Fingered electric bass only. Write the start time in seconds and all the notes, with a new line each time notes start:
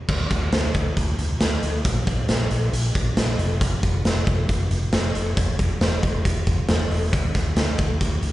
0.08 D2
0.30 D2
0.52 D2
0.75 D2
0.97 D2
1.19 D2
1.41 D2
1.63 D2
1.85 A#1
2.07 A#1
2.29 A#1
2.51 A#1
2.73 A#1
2.95 A#1
3.17 A#1
3.39 F1
3.83 F1
4.05 F1
4.27 F1
4.49 F1
4.71 F1
4.93 F1
5.15 F1
5.37 E1
5.59 E1
5.81 E1
6.03 E1
6.25 E1
6.47 E1
6.68 E1
6.90 E1
7.13 D2
7.35 D2
7.56 D2
7.79 D2
8.01 D2
8.23 D2